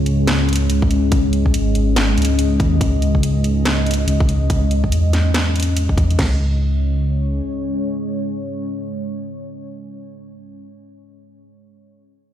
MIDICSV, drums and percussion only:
0, 0, Header, 1, 2, 480
1, 0, Start_track
1, 0, Key_signature, 4, "minor"
1, 0, Tempo, 422535
1, 1269, Time_signature, 4, 2, 24, 8
1, 14011, End_track
2, 0, Start_track
2, 0, Title_t, "Drums"
2, 71, Note_on_c, 9, 42, 48
2, 184, Note_off_c, 9, 42, 0
2, 312, Note_on_c, 9, 38, 117
2, 312, Note_on_c, 9, 42, 73
2, 426, Note_off_c, 9, 38, 0
2, 426, Note_off_c, 9, 42, 0
2, 553, Note_on_c, 9, 42, 45
2, 600, Note_off_c, 9, 42, 0
2, 600, Note_on_c, 9, 42, 59
2, 631, Note_off_c, 9, 42, 0
2, 631, Note_on_c, 9, 42, 73
2, 745, Note_off_c, 9, 42, 0
2, 791, Note_on_c, 9, 42, 72
2, 904, Note_off_c, 9, 42, 0
2, 935, Note_on_c, 9, 36, 100
2, 1030, Note_on_c, 9, 42, 50
2, 1049, Note_off_c, 9, 36, 0
2, 1143, Note_off_c, 9, 42, 0
2, 1269, Note_on_c, 9, 42, 76
2, 1270, Note_on_c, 9, 36, 110
2, 1383, Note_off_c, 9, 42, 0
2, 1384, Note_off_c, 9, 36, 0
2, 1510, Note_on_c, 9, 42, 47
2, 1623, Note_off_c, 9, 42, 0
2, 1656, Note_on_c, 9, 36, 57
2, 1750, Note_on_c, 9, 42, 73
2, 1769, Note_off_c, 9, 36, 0
2, 1863, Note_off_c, 9, 42, 0
2, 1989, Note_on_c, 9, 42, 48
2, 2103, Note_off_c, 9, 42, 0
2, 2231, Note_on_c, 9, 38, 111
2, 2231, Note_on_c, 9, 42, 75
2, 2344, Note_off_c, 9, 38, 0
2, 2344, Note_off_c, 9, 42, 0
2, 2472, Note_on_c, 9, 42, 45
2, 2520, Note_off_c, 9, 42, 0
2, 2520, Note_on_c, 9, 42, 58
2, 2552, Note_off_c, 9, 42, 0
2, 2552, Note_on_c, 9, 42, 73
2, 2666, Note_off_c, 9, 42, 0
2, 2712, Note_on_c, 9, 42, 71
2, 2826, Note_off_c, 9, 42, 0
2, 2951, Note_on_c, 9, 36, 99
2, 2954, Note_on_c, 9, 42, 48
2, 3065, Note_off_c, 9, 36, 0
2, 3067, Note_off_c, 9, 42, 0
2, 3191, Note_on_c, 9, 36, 110
2, 3192, Note_on_c, 9, 42, 74
2, 3305, Note_off_c, 9, 36, 0
2, 3306, Note_off_c, 9, 42, 0
2, 3432, Note_on_c, 9, 42, 49
2, 3546, Note_off_c, 9, 42, 0
2, 3576, Note_on_c, 9, 36, 55
2, 3672, Note_on_c, 9, 42, 76
2, 3690, Note_off_c, 9, 36, 0
2, 3785, Note_off_c, 9, 42, 0
2, 3911, Note_on_c, 9, 42, 49
2, 4024, Note_off_c, 9, 42, 0
2, 4151, Note_on_c, 9, 38, 106
2, 4151, Note_on_c, 9, 42, 74
2, 4265, Note_off_c, 9, 38, 0
2, 4265, Note_off_c, 9, 42, 0
2, 4391, Note_on_c, 9, 42, 45
2, 4439, Note_off_c, 9, 42, 0
2, 4439, Note_on_c, 9, 42, 60
2, 4471, Note_off_c, 9, 42, 0
2, 4471, Note_on_c, 9, 42, 74
2, 4585, Note_off_c, 9, 42, 0
2, 4632, Note_on_c, 9, 42, 71
2, 4745, Note_off_c, 9, 42, 0
2, 4776, Note_on_c, 9, 36, 95
2, 4871, Note_on_c, 9, 42, 50
2, 4890, Note_off_c, 9, 36, 0
2, 4985, Note_off_c, 9, 42, 0
2, 5111, Note_on_c, 9, 36, 104
2, 5111, Note_on_c, 9, 42, 76
2, 5225, Note_off_c, 9, 36, 0
2, 5225, Note_off_c, 9, 42, 0
2, 5350, Note_on_c, 9, 42, 49
2, 5464, Note_off_c, 9, 42, 0
2, 5496, Note_on_c, 9, 36, 57
2, 5591, Note_on_c, 9, 42, 79
2, 5610, Note_off_c, 9, 36, 0
2, 5704, Note_off_c, 9, 42, 0
2, 5831, Note_on_c, 9, 38, 55
2, 5831, Note_on_c, 9, 42, 51
2, 5945, Note_off_c, 9, 38, 0
2, 5945, Note_off_c, 9, 42, 0
2, 6071, Note_on_c, 9, 38, 105
2, 6071, Note_on_c, 9, 42, 77
2, 6184, Note_off_c, 9, 38, 0
2, 6184, Note_off_c, 9, 42, 0
2, 6311, Note_on_c, 9, 42, 46
2, 6358, Note_off_c, 9, 42, 0
2, 6358, Note_on_c, 9, 42, 61
2, 6390, Note_off_c, 9, 42, 0
2, 6390, Note_on_c, 9, 42, 75
2, 6504, Note_off_c, 9, 42, 0
2, 6549, Note_on_c, 9, 42, 74
2, 6663, Note_off_c, 9, 42, 0
2, 6695, Note_on_c, 9, 36, 55
2, 6789, Note_off_c, 9, 36, 0
2, 6789, Note_on_c, 9, 36, 95
2, 6790, Note_on_c, 9, 42, 50
2, 6902, Note_off_c, 9, 36, 0
2, 6904, Note_off_c, 9, 42, 0
2, 6936, Note_on_c, 9, 42, 34
2, 7029, Note_on_c, 9, 36, 98
2, 7030, Note_on_c, 9, 38, 96
2, 7030, Note_on_c, 9, 49, 84
2, 7049, Note_off_c, 9, 42, 0
2, 7142, Note_off_c, 9, 36, 0
2, 7143, Note_off_c, 9, 38, 0
2, 7143, Note_off_c, 9, 49, 0
2, 14011, End_track
0, 0, End_of_file